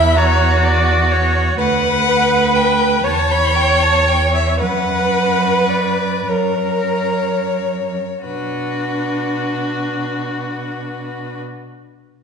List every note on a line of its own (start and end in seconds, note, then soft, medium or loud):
0.00 1.55 E2 medium
0.00 0.17 E4 medium
0.00 0.19 E5 loud
0.00 0.18 B5 loud
0.15 1.59 F#4 medium
0.15 0.65 C#5 medium
0.15 0.63 A#5 loud
0.64 1.13 D5 medium
1.11 1.58 C#5 medium
1.59 3.01 D2 medium
1.59 3.06 B4 loud
1.59 3.05 B4 medium
1.59 2.57 F#5 loud
2.55 3.04 G5 medium
3.04 4.62 E2 medium
3.04 4.62 C#5 medium
3.04 4.59 C#5 medium
3.04 3.32 A5 loud
3.31 3.57 B5 medium
3.55 3.84 G5 loud
3.82 4.09 A5 medium
4.07 4.33 G5 medium
4.34 4.59 E5 medium
4.59 6.27 F#2 medium
4.59 6.30 B4 medium
4.59 6.32 B4 medium
4.59 5.71 F#5 medium
5.69 6.30 D5 medium
6.28 7.95 F#2 medium
6.28 7.26 A#4 medium
6.28 8.00 A#4 medium
6.28 8.25 C#5 medium
8.24 11.39 B2 soft
8.24 11.40 D4 medium
8.24 11.39 F#4 medium
8.24 11.40 B4 medium